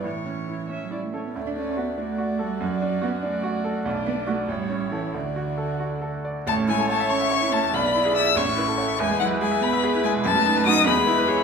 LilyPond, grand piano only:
\new Staff \with { instrumentName = "Grand piano" } { \time 6/8 \key d \major \tempo 4. = 96 a,8 cis'8 e'8 cis'8 e'8 a'8 | d,8 d'8 fis'8 d'8 fis'8 a'8 | fis,8 d'8 fis'8 d'8 fis'8 a'8 | b,,8 d'8 <d' fis'>8 a,,8 cis'8 <e' a'>8 |
d,8 fis'8 a'8 fis'8 a'8 d''8 | \key a \major a,,16 cis'16 e'16 a'16 cis''16 e''16 a''16 e''16 cis''16 e'16 cis'16 e,16 | b,,16 d'16 e'16 gis'16 d''16 e''16 a,,16 cis'16 e'16 a'16 cis''16 e''16 | e,16 gis16 e'16 b'16 gis'16 e''16 b''16 e''16 gis'16 e'16 gis16 b,16 |
fis,16 fis16 dis'16 b'16 fis'16 dis''16 e,16 gis16 e'16 b'16 gis'16 e''16 | }